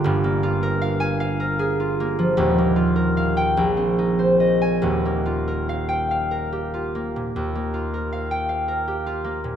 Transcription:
\new Staff \with { instrumentName = "Harp" } { \time 6/8 \key ees \major \tempo 4. = 51 << { g''4~ g''16 aes''4.~ aes''16 | r4 r16 g''16 r4 r16 aes''16 | r4 r16 g''4.~ g''16~ | g''4~ g''16 g''4.~ g''16 | } \\ { <g,, g, bes f' g' bes' f''>16 bes16 f'16 bes'16 f''8 f''16 bes'16 aes'16 f'16 bes16 f16 | <ees,, ees,>16 bes16 f'16 bes'16 f''8 bes,,16 c'16 ees'16 c''16 ees''8 | <ees,, ees,>16 bes16 f'16 bes'16 f''8 f''16 bes'16 g'16 f'16 bes16 bes,16 | ees,16 bes16 f'16 bes'16 f''8 f''16 bes'16 g'16 f'16 bes16 bes,16 | } >> }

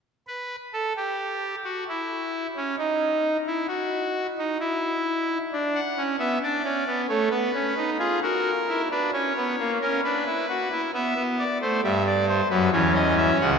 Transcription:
<<
  \new Staff \with { instrumentName = "Pipe organ" } { \time 3/4 \key b \phrygian \tempo 4 = 66 << { r16 b'8 a'16 g'8. fis'16 e'8. cis'16 | dis'8. e'16 fis'8. dis'16 e'4 | r16 fis''8 e''16 d''8. cis''16 b'8. gis'16 | ais'8. b'16 cis''8. ais'16 b'4 |
e''8 d''16 c''16 e''16 d''16 c''16 b'16 cis''16 dis''16 e''16 fis''16 | } \\ { r2. | r2. | d'8 cis'16 b16 d'16 cis'16 b16 a16 b16 cis'16 dis'16 eis'16 | fis'8 e'16 d'16 cis'16 b16 ais16 cis'16 d'16 e'16 fis'16 e'16 |
b2 cis'4 | } >> }
  \new Staff \with { instrumentName = "Pipe organ" } { \clef bass \time 3/4 \key b \phrygian r2. | r2. | r2. | r2. |
r16 b8 a16 <g, g>8. <fis, fis>16 <e, e>8. <cis, cis>16 | }
>>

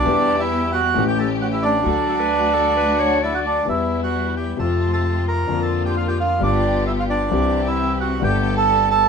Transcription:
<<
  \new Staff \with { instrumentName = "Bandoneon" } { \time 4/4 \key e \dorian \tempo 4 = 132 <d' d''>8. <e' e''>8. <fis' fis''>8. <g' g''>16 <a' a''>8 <fis' fis''>16 <e' e''>16 <d' d''>8~ | <d' d''>2. <e' e''>16 <fis' fis''>16 <d' d''>8 | <e' e''>8. <fis' fis''>8. <g' g''>8 <a' a''>8. <a' a''>8. <bes' bes''>8~ | <bes' bes''>16 <a' a''>8 <g' g''>16 <f' f''>16 <g' g''>16 <f' f''>8 <d' d''>4 <e' e''>16 <f' f''>16 <d' d''>8~ |
<d' d''>8. <e' e''>8. <fis' fis''>8 <g' g''>8. <a' a''>8. <a' a''>8 | }
  \new Staff \with { instrumentName = "Clarinet" } { \time 4/4 \key e \dorian r1 | r8 a'16 b'8. a'8 b'8 cis''8 d''4 | r1 | r1 |
r1 | }
  \new Staff \with { instrumentName = "String section" } { \time 4/4 \key e \dorian <b e' g'>2 <a cis' g'>2 | <a d' fis'>1 | <g b e'>2 <a c' f'>2 | <bes d' f'>2 <b f' g'>2 |
<c' e' g'>2 <b g' a'>2 | }
  \new Staff \with { instrumentName = "Grand piano" } { \clef bass \time 4/4 \key e \dorian <e, e g b g'>2 <a,, a, e a cis' g'>2 | <d, d fis a d' a'>1 | <e, e g b e'>2 <f, c f a f'>2 | <f, d f bes f'>2 <g,, g, d g b f'>2 |
<c, c e g c' g'>2 <g,, g, d a b g'>2 | }
  \new Staff \with { instrumentName = "Upright bass" } { \clef bass \time 4/4 \key e \dorian e,2 a,,2 | d,1 | e,2 f,2 | f,2 g,,2 |
c,2 g,,2 | }
>>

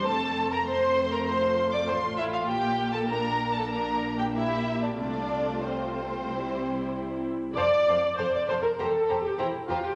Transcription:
<<
  \new Staff \with { instrumentName = "Violin section" } { \time 4/4 \key f \major \tempo 4 = 98 a''8. bes''16 c'''8. bes''16 c'''8. d'''16 c'''8 e''16 f''16 | g''8. a''16 bes''8. a''16 bes''8. g''16 e''8. d''16 | d''4 c''2~ c''8 r8 | f''8 f''8 f''8 f''8 bes''8 bes''8 bes''8 bes''8 | }
  \new Staff \with { instrumentName = "Violin section" } { \time 4/4 \key f \major a'8. bes'16 c''8. bes'16 c''8. d''16 c''8 e'16 f'16 | g'8. a'16 bes'8. a'16 bes'8. g'16 e'8. d'16 | d'4 c'2~ c'8 r8 | <a' c''>8 <a' c''>8 <a' c''>8 <a' c''>8 <g' c''>8 <g' c''>8 <g' c''>8 <g' c''>8 | }
  \new Staff \with { instrumentName = "Viola section" } { \time 4/4 \key f \major << { c'4 c'4 f'2~ | f'4 d'4 d'4 g'4 | f'2 e'4. r8 | d''4 c''16 d''16 c''16 bes'16 a'8. g'16 e'8 f'16 g'16 | } \\ { a4 a2. | bes1 | a2 g4. r8 | r1 | } >> }
  \new Staff \with { instrumentName = "Cello section" } { \clef bass \time 4/4 \key f \major f,2. a,4 | bes,1 | c2 c4. r8 | f,8 f,8 f,8 f,8 e,8 e,8 e,8 e,8 | }
  \new Staff \with { instrumentName = "Double bass section" } { \clef bass \time 4/4 \key f \major f,,2. a,,4 | bes,,1 | c,2 c,4. r8 | f,,8 f,,8 f,,8 f,,8 e,,8 e,,8 e,,8 e,,8 | }
>>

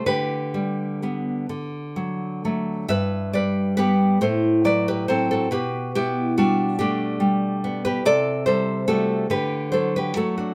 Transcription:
\new Staff \with { instrumentName = "Nylon-string guitar" } { \time 6/8 \key g \major \tempo 4. = 46 << { <g' b'>2~ <g' b'>8 r8 | <b' e''>8 <b' d''>8 <g' b'>8 <a' c''>8 <b' d''>16 <g' b'>16 <a' c''>16 <fis' a'>16 | <g' b'>8 <e' g'>8 <d' fis'>8 <d' g'>4~ <d' g'>16 <g' b'>16 | <a' d''>8 <a' c''>8 <fis' a'>8 <g' b'>8 <a' c''>16 <g' b'>16 <fis' a'>16 <d' fis'>16 | } \\ { d8 g8 <g b>8 d8 fis8 <fis a>8 | g,8 g8 <g b>8 a,8 fis8 <fis c'>8 | b,8 b8 g8 a8 g8 b8 | c8 g8 <g a>8 d8 fis8 <fis a>8 | } >> }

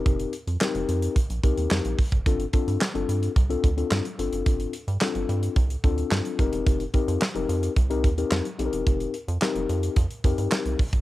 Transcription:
<<
  \new Staff \with { instrumentName = "Tine electric piano" } { \time 4/4 \key f \mixolydian \tempo 4 = 109 <c' ees' g' bes'>8 r8 <c' ees' g' bes'>4 r8 <c' ees' g' bes'>4 r8 | <c' d' f' a'>16 r16 <c' d' f' a'>8 r16 <c' d' f' a'>8. r16 <c' d' f' a'>16 r16 <c' d' f' a'>8 r16 <c' d' f' a'>8~ | <c' d' f' a'>8 r8 <c' d' f' a'>4 r8 <c' d' f' a'>4 <c' ees' g' bes'>8~ | <c' ees' g' bes'>16 r16 <c' ees' g' bes'>8 r16 <c' ees' g' bes'>8. r16 <c' ees' g' bes'>16 r16 <c' ees' g' bes'>8 r16 <c' ees' g' a' bes'>8~ |
<c' ees' g' a' bes'>8 r8 <c' ees' g' bes'>4 r8 <c' ees' g' bes'>4 r8 | }
  \new Staff \with { instrumentName = "Analog synth bass" } { \clef bass \time 4/4 \key f \mixolydian f,,8 r16 f,16 r16 f,,16 f,8 r16 bes,,16 c,16 ees,16 f,16 bes,,16 r16 fis,,16 | g,,8 r16 g,16 r16 g,,16 g,8 c,8 d,8 g,16 r16 g,,16 fis,,16 | g,,8 r16 g,16 r16 g,,16 g,8 c,8 d,8 g,16 r16 f,,16 e,,16 | f,,8 r16 f,16 r16 f,,16 f,8 c,8 ees,8 f,16 r16 bes,,16 e,,16 |
f,,8 r16 f,16 r16 f,,16 f,8 f,16 r16 f,16 g,16 r16 c,16 bes,,16 fis,,16 | }
  \new DrumStaff \with { instrumentName = "Drums" } \drummode { \time 4/4 <hh bd>16 hh16 hh16 hh16 <hc sn>16 hh16 hh16 hh16 <hh bd>16 hh16 <hh bd>16 hh16 <hc sn>16 hh16 <hho bd>16 <hh bd>16 | <hh bd>16 hh16 <hh bd>16 hh16 <hc sn>16 hh16 hh16 hh16 <hh bd>16 hh16 <hh bd>16 hh16 <hc sn>16 hh16 hh16 hh16 | <hh bd>16 hh16 hh16 hh16 <hc sn>16 hh16 hh16 hh16 <hh bd>16 hh16 <hh bd>16 hh16 <hc sn>16 hh16 <hh bd>16 hh16 | <hh bd>16 hh16 <hh bd>16 hh16 <hc sn>16 hh16 hh16 hh16 <hh bd>16 hh16 <hh bd>16 hh16 <hc sn>16 hh16 hh16 hh16 |
<hh bd>16 hh16 hh16 hh16 <hc sn>16 hh16 hh16 hh16 <hh bd>16 hh16 <hh bd>16 hh16 <hc sn>16 hh16 <hho bd>16 <hh bd>16 | }
>>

